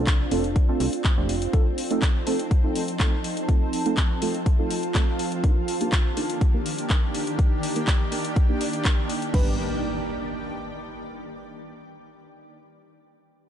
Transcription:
Already playing: analog synth bass C2, ambient pad C4 D4 F4
0.07 kick, clap, closed hi-hat
0.31 analog synth bass F1, synth stab A3 C4 D4 F4 A4, open hi-hat
0.44 closed hi-hat
0.56 kick, closed hi-hat
0.69 synth stab A3 C4 D4 F4 A4
0.80 analog synth bass C2, open hi-hat
0.93 closed hi-hat
1.04 kick, clap, closed hi-hat
1.17 analog synth bass F1, synth stab A3 C4 D4 F4 G4
1.29 open hi-hat
1.42 closed hi-hat
1.53 ambient pad F3 D#4 A4, synth stab A3 C4 D#4 F4 A4, kick, closed hi-hat
1.78 open hi-hat
1.91 synth stab A3 C4 D#4 F4 A4, closed hi-hat
2.02 kick, clap, closed hi-hat
2.27 synth stab A3 C4 D#4 F4 A4, open hi-hat
2.39 closed hi-hat
2.51 kick, closed hi-hat
2.64 synth stab A3 C4 D#4 F4 A4
2.75 open hi-hat
2.88 closed hi-hat
3.00 synth stab A3 C4 D#4 F4 A4, kick, clap, closed hi-hat
3.24 open hi-hat
3.37 closed hi-hat
3.49 synth stab A3 C4 D#4 F4 A4, ambient pad F4, kick, closed hi-hat
3.73 open hi-hat
3.86 synth stab A3 C4 D#4 F4 A4, closed hi-hat
3.97 kick, clap, closed hi-hat
4.22 synth stab A3 C4 D#4 F4 A4, open hi-hat
4.35 closed hi-hat
4.46 kick, closed hi-hat
4.59 synth stab A3 C4 D#4 F4 A4
4.71 open hi-hat
4.83 closed hi-hat
4.95 synth stab A3 C4 D#4 F4 A4, kick, clap, closed hi-hat
5.19 open hi-hat
5.32 closed hi-hat
5.44 ambient pad D#3 A#3 D4 G4, synth stab A#3 D4 D#4 G4 A#4, kick, closed hi-hat
5.68 open hi-hat
5.81 synth stab A#3 D4 D#4 G4 A#4, closed hi-hat
5.92 kick, clap, closed hi-hat
6.17 synth stab A#3 D4 D#4 G4 A#4, open hi-hat
6.30 closed hi-hat
6.41 kick, closed hi-hat
6.54 synth stab A#3 D4 D#4 G4 A#4
6.66 open hi-hat
6.78 closed hi-hat
6.90 synth stab A#3 D4 D#4 G4 A#4, kick, clap, closed hi-hat
7.15 open hi-hat
7.27 closed hi-hat
7.39 synth stab A#3 D4 D#4 G4 A#4, kick, closed hi-hat
7.63 open hi-hat
7.76 synth stab A#3 D4 D#4 G4 A#4, closed hi-hat
7.87 kick, clap, closed hi-hat
8.12 synth stab A#3 D4 D#4 G4 A#4, open hi-hat
8.25 closed hi-hat
8.36 kick, closed hi-hat
8.49 synth stab A#3 D4 D#4 G4 A#4
8.61 open hi-hat
8.73 closed hi-hat
8.85 synth stab A#3 D4 D#4 G4 A#4, kick, clap, closed hi-hat
9.10 open hi-hat
9.22 closed hi-hat
9.34 analog synth bass G1, synth stab G3 B3 D4 G4 B4, kick, crash, impact

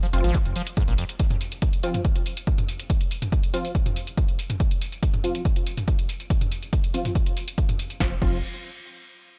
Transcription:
0.03 acid bass F3, closed hi-hat
0.13 detuned saw bass F1, acid bass F1, synth stab F3 C4 F4, open hi-hat
0.24 detuned saw bass G#1, acid bass F3, open hi-hat
0.35 acid bass F2, kick, closed hi-hat
0.45 detuned saw bass F1, closed hi-hat
0.56 acid bass F3, open hi-hat
0.67 closed hi-hat
0.77 acid bass G#2, kick, closed hi-hat
0.88 detuned saw bass G#1, acid bass A#2, closed hi-hat
0.98 acid bass F2, open hi-hat
1.09 closed hi-hat
1.19 kick, closed hi-hat, tambourine
1.30 closed hi-hat, mid tom
1.41 open hi-hat, tambourine
1.52 closed hi-hat, tambourine
1.62 kick, closed hi-hat, tambourine
1.73 closed hi-hat
1.83 synth stab F3 C4 F4, open hi-hat, tambourine
1.94 closed hi-hat, mid tom, tambourine
2.05 kick, closed hi-hat, tambourine
2.16 closed hi-hat
2.26 open hi-hat, tambourine
2.37 closed hi-hat, tambourine
2.47 kick, closed hi-hat, tambourine
2.58 closed hi-hat, mid tom
2.69 open hi-hat, tambourine
2.80 closed hi-hat, tambourine
2.90 kick, closed hi-hat, tambourine
3.01 closed hi-hat
3.11 open hi-hat, tambourine
3.22 closed hi-hat, mid tom, tambourine
3.32 kick, closed hi-hat, tambourine
3.43 closed hi-hat
3.54 synth stab F3 C4 F4, open hi-hat, tambourine
3.65 open hi-hat, tambourine
3.75 kick, closed hi-hat, tambourine
3.86 closed hi-hat, mid tom
3.96 open hi-hat, tambourine
4.07 closed hi-hat, tambourine
4.18 kick, closed hi-hat, tambourine
4.28 closed hi-hat
4.39 open hi-hat, tambourine
4.50 closed hi-hat, mid tom, tambourine
4.60 kick, closed hi-hat, tambourine
4.71 closed hi-hat
4.81 open hi-hat, tambourine
4.92 closed hi-hat, tambourine
5.03 kick, closed hi-hat, tambourine
5.14 closed hi-hat, mid tom
5.24 synth stab F3 C4 F4, open hi-hat, tambourine
5.35 closed hi-hat, tambourine
5.45 kick, closed hi-hat, tambourine
5.56 closed hi-hat
5.66 open hi-hat, tambourine
5.77 closed hi-hat, mid tom, tambourine
5.88 kick, closed hi-hat, tambourine
5.99 closed hi-hat
6.09 open hi-hat, tambourine
6.20 closed hi-hat, tambourine
6.30 kick, closed hi-hat, tambourine
6.41 closed hi-hat, mid tom
6.52 open hi-hat, tambourine
6.63 closed hi-hat, tambourine
6.73 kick, closed hi-hat, tambourine
6.84 closed hi-hat
6.94 synth stab F3 C4 F4, open hi-hat, tambourine
7.05 mid tom, open hi-hat, tambourine
7.15 kick, closed hi-hat, tambourine
7.26 closed hi-hat
7.37 open hi-hat, tambourine
7.48 closed hi-hat, tambourine
7.58 kick, closed hi-hat, tambourine
7.69 closed hi-hat, mid tom
7.79 open hi-hat, tambourine
7.90 closed hi-hat, tambourine
8.00 detuned saw bass F1, synth stab F3 C4 F4, kick, snare
8.22 detuned saw bass F1, synth stab F3 C4 F4, kick, crash

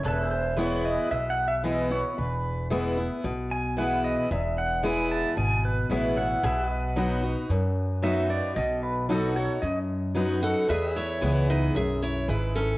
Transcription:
0.03 upright bass E1, steel-string acoustic guitar E2, pedal steel guitar A4 B4 C#5
0.08 pedal steel guitar E5
0.26 pedal steel guitar G#4
0.31 pedal steel guitar B4 C5
0.56 steel-string acoustic guitar E3 G#3 B3 E4, honky-tonk piano E4 G#4 B4, pedal steel guitar C#5
0.85 pedal steel guitar D#5
1.11 upright bass B1, steel-string acoustic guitar B2, pedal steel guitar E5
1.30 pedal steel guitar F#5
1.48 pedal steel guitar E5
1.63 steel-string acoustic guitar E3 G#3 B3 E4, honky-tonk piano E4 G#4 B4, pedal steel guitar D#5
1.91 steel-string acoustic guitar B3 E4, pedal steel guitar C#5
2.18 upright bass E1, steel-string acoustic guitar E2, pedal steel guitar B4
2.70 steel-string acoustic guitar E3 G#3 B3 E4, honky-tonk piano E4 G#4 B4
2.97 steel-string acoustic guitar B3 E4
3.24 upright bass B1, steel-string acoustic guitar B2
3.51 pedal steel guitar G#5
3.77 steel-string acoustic guitar E3 G#3 B3 E4, honky-tonk piano E4 G#4 B4, pedal steel guitar F#5
4.04 pedal steel guitar D#5
4.31 upright bass E1, steel-string acoustic guitar E2, pedal steel guitar E5
4.58 pedal steel guitar F#5
4.83 steel-string acoustic guitar E3 G#3 B3 E4, honky-tonk piano E4 G#4 B4, pedal steel guitar G#5
5.12 pedal steel guitar A5
5.37 upright bass G#1, steel-string acoustic guitar B2, pedal steel guitar G#5
5.65 pedal steel guitar B4
5.90 upright bass A1, steel-string acoustic guitar E3 G#3 B3 E4, honky-tonk piano E4 G#4 C#5, pedal steel guitar E5
6.16 steel-string acoustic guitar B3 E4, pedal steel guitar F#5
6.43 upright bass B1, steel-string acoustic guitar B2, pedal steel guitar G#4 B4 E5
6.66 pedal steel guitar F#4 D#5
6.96 steel-string acoustic guitar F#3 B3 D#4 F#4, honky-tonk piano D#4 F#4 B4
7.23 steel-string acoustic guitar D#4 F#4
7.49 upright bass F#2, steel-string acoustic guitar F#2
8.02 steel-string acoustic guitar F#3 B3 D#4 F#4, honky-tonk piano D#4 F#4 B4, pedal steel guitar E5
8.29 steel-string acoustic guitar D#4 F#4, pedal steel guitar D5
8.56 upright bass B1, steel-string acoustic guitar B2, pedal steel guitar D#5
8.83 pedal steel guitar B4
9.09 steel-string acoustic guitar F#3 B3 D#4 F#4, honky-tonk piano D#4 F#4 A4, pedal steel guitar A4
9.36 steel-string acoustic guitar D#4 F#4, pedal steel guitar C#5
9.62 upright bass F#2, steel-string acoustic guitar F#2, pedal steel guitar D#5
10.15 steel-string acoustic guitar F#3 B3 D#4 F#4, honky-tonk piano D#4 F#4 B4
10.42 steel-string acoustic guitar D#4 F#4 A4 F#5
10.68 steel-string acoustic guitar E2 G#4 E5, upright bass E2, pedal steel guitar F#4 B4 D#5
10.91 pedal steel guitar G#4 E5
10.96 steel-string acoustic guitar E4 C#5
11.21 upright bass C#2, steel-string acoustic guitar E3 G#3 B3 E4, honky-tonk piano E4 G#4 B4
11.50 steel-string acoustic guitar D#4 B4
11.75 upright bass B1, steel-string acoustic guitar F#2 G#4 E5
12.02 steel-string acoustic guitar E4 C#5
12.28 upright bass G#1, steel-string acoustic guitar G#2 E4 B4, honky-tonk piano E4 G#4 B4
12.55 steel-string acoustic guitar C#4 A4

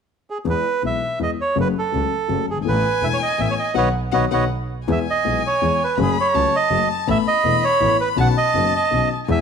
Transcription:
0.30 bandoneon G#4
0.45 grand piano E2 E3 G#3 B3 G#4, double bass E2
0.50 bandoneon B4
0.83 grand piano B1 B2 E3 G#3 B3 G#4, double bass B1, bandoneon E5
1.19 grand piano E2 E3 G#3 B3 G#4, double bass E2, bandoneon D#5
1.41 bandoneon C#5
1.56 double bass F#1, grand piano F#2 F#3 A3 C#4 G#4
1.61 bandoneon B4
1.79 bandoneon A4
1.92 grand piano C#2 C#3 F#3 A3 C#4 G#4, double bass C#2
2.28 double bass F#1, grand piano F#2 F#3 A3 C#4 G#4
2.49 grand piano F#1, double bass G1, bandoneon G#4
2.56 grand piano G1
2.61 grand piano G#1 E3
2.65 grand piano A1 A2 A3 B3 A4, double bass A1, bandoneon B4, violin G#5
3.01 grand piano E1 E2 E3 A3 B3 A4, double bass E1, bandoneon E5
3.13 bandoneon C#5
3.22 bandoneon D#5
3.38 grand piano A1 A2 E3 A3 B3 A4, double bass A1, bandoneon E5
3.51 bandoneon C#5
3.59 bandoneon D#5
3.74 double bass B1, grand piano D#3 F#3 B3, bandoneon B4 C#5 D#5, violin F#5
4.12 double bass B1, grand piano D#3 F#3 B3, bandoneon B4 C#5 D#5, violin F#5
4.31 double bass B1, grand piano D#3 F#3 B3, bandoneon B4 C#5 D#5, violin F#5
4.87 grand piano E2 E3 G#3 B3 G#4, double bass E2, violin G#5
4.92 bandoneon E5
5.10 bandoneon D#5
5.25 grand piano B1 B2 E3 G#3 B3 G#4, double bass B1
5.47 bandoneon C#5
5.62 grand piano E2 E3 G#3 B3 G#4, double bass E2
5.84 bandoneon B4
5.98 double bass F#1, grand piano F#2 F#3 A3 C#4 G#4, violin B5
6.02 bandoneon G#4
6.20 bandoneon C#5
6.34 grand piano C#2 C#3 F#3 A3 C#4 G#4, double bass C#2, violin A5
6.56 bandoneon D#5
6.71 double bass F#1, grand piano F#2 F#3 A3 C#4 G#4
7.07 grand piano A1 A2 E3 A3 B3 A4, double bass A1, bandoneon E5, violin B5
7.27 bandoneon D#5
7.44 grand piano E1 E2 E3 A3 B3 A4, double bass E1
7.64 bandoneon C#5
7.80 grand piano A1 A2 E3 A3 B3 A4, double bass A1
8.01 bandoneon B4
8.16 grand piano B1 B2 D#3 B3 C#4 F#4, double bass B1, violin A5
8.20 bandoneon F#5
8.37 bandoneon D#5
8.53 grand piano F#1 F#2 D#3 B3 C#4 F#4, double bass F#1
8.76 bandoneon D#5
8.91 grand piano B1 B2 D#3 B3 C#4 F#4, double bass B1
9.28 grand piano E2 E3 G#3 B3 G#4, double bass E2, bandoneon E5, violin G#5

